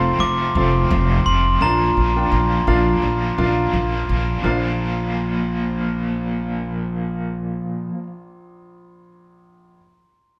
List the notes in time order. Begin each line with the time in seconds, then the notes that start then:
Already playing: F1 C3 F3 A3 C4 F4 A4 F5 C6
0.19 F1 F3 A3 C4 F4 D6
0.55 F1 F3 A3 C4 F4 A4 F5
0.90 F1 F2 C3 F3 A3 C4 F4
1.26 F1 F3 A3 C4 F4 C6
1.61 A#1 A#2 F3 A#3 D4 F4 A#4 F5 A#5
1.97 A#1 A#3 D4 F4
2.16 D4 F4 A#4 G5
2.32 A#1 A#2 F3 A#3 D4 F4
2.67 A#1 A#3 D4 F4 A#4 F5
3.02 A#1 F3 A#3 D4 F4
3.37 A#1 A#3 D4 F4 A#4 F5
3.73 A#1 A#2 F3 A#3 D4 F4
4.09 A#1 A#3 D4 F4
4.38 A#2 D4
4.43 A#1 F3 F4 A#4 F5
4.49 A#3
4.53 D4 F4